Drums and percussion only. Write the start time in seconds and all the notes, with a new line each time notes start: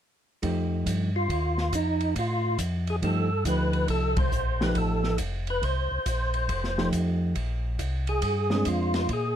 0.43 kick, ride
0.86 kick, hi-hat pedal, ride
1.29 kick, ride
1.58 snare
1.73 kick, hi-hat pedal, ride
2.01 ride
2.16 kick, ride
2.59 kick, hi-hat pedal, ride
2.87 ride
3.02 kick, ride
3.45 kick, hi-hat pedal, ride
3.73 ride
3.88 kick, ride
4.17 kick, ride
4.32 hi-hat pedal
4.61 snare
4.75 kick, ride
5.04 snare
5.18 kick, hi-hat pedal, ride
5.47 ride
5.63 kick, ride
6.06 kick, hi-hat pedal, ride
6.34 ride
6.49 kick, ride
6.64 snare
6.78 snare
6.92 kick, hi-hat pedal, ride
7.35 kick, ride
7.79 kick, hi-hat pedal, ride
8.07 ride
8.22 kick, ride
8.50 snare
8.65 kick, hi-hat pedal, ride
8.94 snare, ride
9.09 kick, ride